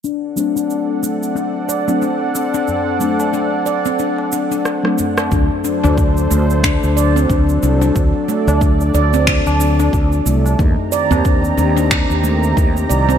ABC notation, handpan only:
X:1
M:4/4
L:1/16
Q:"Swing 16ths" 1/4=91
K:none
V:1 name="Handpan"
D2 D D3 A, z D2 d C D2 D D- | D2 A, z D2 d C D2 D D3 A, z | D2 D D3 A, z D2 d C D2 D D- | D2 A, z D2 d C D2 D D3 A, z |
_E2 d C D2 D D3 A, z E2 d C |]